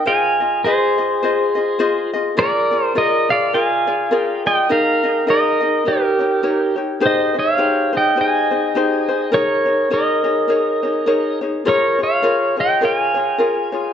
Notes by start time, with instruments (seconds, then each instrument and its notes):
0.06 ukulele F4 G#4 C5 D#5, pedal steel guitar F5 G#5
0.40 ukulele F4 G#4 D#5
0.64 ukulele F4 G#4 C5 D#5, pedal steel guitar G#4 C5
0.98 ukulele F4 G#4 D#5
1.23 ukulele F4 G#4 C5 D#5
1.55 ukulele F4 G#4 D#5
1.79 ukulele F4 G#4 C5 D#5
2.13 ukulele F4 G#4 D#5
2.37 ukulele F4 G#4 A#4 D5, pedal steel guitar A#4 D5
2.71 ukulele F4 G#4 D5
2.85 pedal steel guitar C5
2.95 ukulele F4 G#4 A#4 D5, pedal steel guitar A#4 D#5
3.29 ukulele F4 G#4 D5, pedal steel guitar D5 F5
3.53 ukulele F4 G#4 A#4 D5, pedal steel guitar F5 G#5
3.87 ukulele F4 G#4 D5
4.11 ukulele F4 G#4 A#4 D5
4.18 pedal steel guitar G5
4.46 ukulele F4 G#4 D5, pedal steel guitar D#5 G5
4.69 ukulele D#4 G#4 A#4 D#5, pedal steel guitar A#4 F5
5.03 ukulele D#4 G#4 D#5
5.27 ukulele D#4 G#4 A#4 D#5, pedal steel guitar A#4 D#5
5.60 ukulele D#4 G#4 D#5
5.85 ukulele D#4 G4 A#4 C#5, pedal steel guitar G4 A#4
6.19 ukulele D#4 G4 C#5
6.43 ukulele D#4 G4 A#4 C#5
6.76 ukulele D#4 G4 C#5
7.00 ukulele D#4 G4 G#4 C5
7.06 pedal steel guitar C5 D#5
7.34 ukulele D#4 G#4 C5
7.39 pedal steel guitar C#5 F5
7.58 ukulele D#4 G4 G#4 C5
7.93 ukulele D#4 G#4 C5
7.97 pedal steel guitar D#5 G5
8.16 ukulele D#4 G4 G#4 C5
8.21 pedal steel guitar D#5 G#5
8.51 ukulele D#4 G#4 C5
8.75 ukulele D#4 G4 G#4 C5
9.09 ukulele D#4 G#4 C5
9.32 ukulele D#4 G#4 A#4 C#5, pedal steel guitar A#4 C#5
9.66 ukulele D#4 G#4 C#5
9.90 ukulele D#4 G#4 A#4 C#5, pedal steel guitar A#4 D#5
10.24 ukulele D#4 G#4 C#5
10.48 ukulele D#4 G#4 A#4 C#5
10.83 ukulele D#4 G#4 C#5
11.06 ukulele D#4 G#4 A#4 C#5
11.41 ukulele D#4 G#4 C#5
11.65 ukulele F4 G#4 A#4 C#5, pedal steel guitar A#4 C#5
11.99 ukulele F4 G#4 C#5
12.03 pedal steel guitar C#5 F5
12.23 ukulele F4 G#4 A#4 C#5
12.57 ukulele F4 G#4 C#5, pedal steel guitar D#5
12.61 pedal steel guitar G5
12.81 ukulele F4 G#4 A#4 C#5, pedal steel guitar F5 G5
12.96 pedal steel guitar G#5
13.14 ukulele F4 G#4 C#5
13.38 ukulele F4 G#4 A#4 C#5
13.72 ukulele F4 G#4 C#5